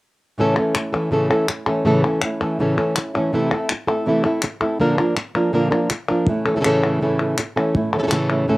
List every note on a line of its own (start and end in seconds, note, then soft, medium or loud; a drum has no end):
0.38 0.56 A2 medium
0.38 0.56 C#3 medium
0.38 0.57 E3 medium
0.38 0.57 A3 medium
0.38 0.56 C#4 medium
0.38 0.55 E4 medium
0.38 0.56 A4 medium
0.56 0.74 E3 soft
0.56 0.75 A3 soft
0.56 0.75 C#4 soft
0.56 0.74 E4 soft
0.56 0.75 A4 soft
0.75 1.10 E3 soft
0.75 1.11 A3 soft
0.75 1.11 C#4 soft
0.75 1.11 E4 soft
0.75 muted nylon-string guitar stroke medium
0.75 clap medium
0.93 1.11 E3 soft
0.93 1.11 A3 soft
0.93 1.12 C#4 soft
0.93 1.11 A4 medium
1.11 1.29 A2 medium
1.11 1.30 C#3 medium
1.11 1.30 E3 medium
1.11 1.30 A3 medium
1.11 1.30 C#4 medium
1.11 1.29 A4 medium
1.11 muted nylon-string guitar stroke medium
1.30 1.48 E3 soft
1.30 1.48 A3 soft
1.30 1.49 C#4 medium
1.30 1.66 E4 soft
1.30 1.48 A4 medium
1.48 muted nylon-string guitar stroke medium
1.48 clap medium
1.67 1.84 E3 soft
1.67 1.85 A3 soft
1.67 1.85 C#4 soft
1.67 1.85 E4 soft
1.67 1.85 A4 soft
1.85 2.03 A2 medium
1.85 2.03 C#3 medium
1.85 2.03 E3 medium
1.85 2.04 A3 medium
1.85 2.03 C#4 medium
1.85 2.03 E4 medium
1.85 2.02 A4 medium
2.04 2.22 E3 soft
2.04 2.22 A3 soft
2.04 2.22 C#4 soft
2.04 2.22 E4 soft
2.04 2.22 A4 soft
2.22 2.59 E3 soft
2.22 2.59 A3 soft
2.22 2.59 C#4 soft
2.22 2.60 E4 soft
2.22 muted nylon-string guitar stroke medium
2.22 clap medium
2.41 2.59 E3 soft
2.41 2.59 A3 soft
2.41 2.59 C#4 medium
2.41 2.59 A4 medium
2.59 2.77 A2 medium
2.59 2.77 C#3 medium
2.59 2.78 E3 medium
2.59 2.78 A3 medium
2.59 2.77 C#4 medium
2.59 2.76 A4 medium
2.59 muted nylon-string guitar stroke medium
2.77 2.97 E3 soft
2.77 2.96 A3 soft
2.77 2.96 C#4 soft
2.77 3.13 E4 soft
2.77 2.96 A4 medium
2.96 muted nylon-string guitar stroke medium
2.96 clap medium
3.14 3.33 A3 soft
3.14 3.34 C#4 medium
3.14 3.32 E4 soft
3.14 3.33 A4 soft
3.19 3.33 E3 soft
3.33 3.51 C3 medium
3.33 3.51 E3 medium
3.33 3.51 A3 medium
3.33 3.51 C4 medium
3.33 3.52 E4 medium
3.33 3.51 A4 medium
3.52 3.71 A3 soft
3.52 3.69 C4 soft
3.52 3.70 E4 soft
3.52 3.69 A4 soft
3.69 muted nylon-string guitar stroke medium
3.69 clap medium
3.87 4.07 A3 soft
3.87 4.06 C4 soft
3.87 4.07 E4 medium
3.87 4.06 A4 medium
4.06 4.24 C3 medium
4.06 4.25 E3 medium
4.06 4.25 A3 medium
4.06 4.24 C4 medium
4.06 4.25 E4 medium
4.06 4.24 A4 medium
4.25 4.42 A3 soft
4.25 4.42 C4 soft
4.25 4.43 E4 medium
4.25 4.43 A4 medium
4.42 muted nylon-string guitar stroke medium
4.42 clap medium
4.61 4.80 A3 soft
4.61 4.80 C4 soft
4.61 4.80 E4 soft
4.61 4.79 A4 medium
4.80 4.98 A#2 medium
4.80 4.98 D3 medium
4.80 4.98 F3 medium
4.80 4.99 A#3 medium
4.80 4.98 D4 medium
4.80 4.98 F4 medium
4.80 4.97 A#4 medium
4.98 5.16 F3 soft
4.98 5.16 A#3 soft
4.98 5.16 D4 soft
4.98 5.17 F4 soft
4.98 5.16 A#4 medium
5.17 muted nylon-string guitar stroke medium
5.17 clap medium
5.35 5.52 F3 soft
5.35 5.53 A#3 soft
5.35 5.53 D4 medium
5.35 5.53 F4 soft
5.35 5.53 A#4 medium
5.53 5.71 A#2 medium
5.53 5.71 D3 medium
5.53 5.71 F3 medium
5.53 5.71 A#3 medium
5.53 5.70 D4 medium
5.53 5.70 F4 medium
5.53 5.70 A#4 medium
5.71 5.89 F3 soft
5.71 5.90 A#3 soft
5.71 5.90 D4 soft
5.71 5.90 F4 soft
5.71 5.89 A#4 soft
5.90 muted nylon-string guitar stroke medium
5.90 clap medium
6.09 6.28 F3 soft
6.09 6.28 A#3 soft
6.09 6.27 D4 soft
6.09 6.27 F4 soft
6.09 6.27 A#4 soft
6.27 6.46 A2 medium
6.27 6.46 E3 medium
6.27 6.46 A3 medium
6.27 6.46 C#4 medium
6.27 6.46 E4 medium
6.27 muted nylon-string guitar stroke medium
6.46 6.55 E3 soft
6.46 6.55 A3 soft
6.46 6.56 C#4 soft
6.46 6.64 E4 soft
6.46 6.56 A4 medium
6.56 6.59 C#3 soft
6.56 6.60 E3 medium
6.56 6.60 A3 medium
6.56 6.60 C#4 soft
6.56 6.61 A4 medium
6.60 6.64 C#3 medium
6.60 6.65 E3 medium
6.60 6.65 A3 medium
6.60 6.65 C#4 medium
6.60 6.65 A4 medium
6.60 clap medium
6.65 7.00 A2 medium
6.65 7.00 C#3 medium
6.65 7.01 E3 medium
6.65 7.01 A3 medium
6.65 7.01 C#4 medium
6.65 7.01 A4 medium
6.65 muted nylon-string guitar stroke soft
6.83 7.01 A3 soft
6.83 7.01 C#4 soft
6.83 7.01 E4 soft
7.01 7.37 A2 medium
7.01 7.37 C#3 medium
7.01 7.38 E3 medium
7.01 7.38 A3 medium
7.01 7.38 C#4 medium
7.01 7.19 E4 medium
7.01 7.38 A4 medium
7.20 7.38 A3 soft
7.20 7.38 C#4 soft
7.20 7.38 E4 soft
7.38 muted nylon-string guitar stroke medium
7.38 clap medium
7.56 7.75 E3 soft
7.56 7.75 A3 soft
7.56 7.75 C#4 soft
7.56 7.74 E4 soft
7.56 7.74 A4 medium
7.56 clap soft
7.75 7.93 A2 medium
7.75 7.93 E3 medium
7.75 7.93 A3 medium
7.75 7.93 C#4 medium
7.75 7.91 E4 medium
7.75 muted nylon-string guitar stroke medium
7.93 7.98 E3 soft
7.93 7.98 A3 soft
7.93 7.98 C#4 soft
7.93 8.11 E4 soft
7.93 7.98 A4 medium
7.98 8.02 C#3 medium
7.98 8.02 A3 soft
7.98 8.02 C#4 medium
7.98 8.03 A4 medium
8.03 8.06 C#3 medium
8.03 8.06 E3 medium
8.03 8.06 A3 medium
8.03 8.07 C#4 medium
8.03 8.07 A4 medium
8.07 8.11 C#3 medium
8.07 8.11 E3 medium
8.07 8.11 A3 medium
8.07 8.12 C#4 medium
8.07 8.12 A4 medium
8.07 clap medium
8.11 8.47 A2 medium
8.11 8.47 C#3 medium
8.11 8.47 E3 medium
8.11 8.48 A3 medium
8.11 8.48 C#4 medium
8.11 8.48 A4 medium
8.11 muted nylon-string guitar stroke soft
8.30 8.48 A3 soft
8.30 8.48 C#4 soft
8.30 8.48 E4 soft
8.48 8.58 A2 medium
8.48 8.58 C#3 medium
8.48 8.58 E3 medium
8.48 8.58 A3 medium
8.48 8.58 C#4 medium
8.48 8.58 E4 medium
8.48 8.58 A4 medium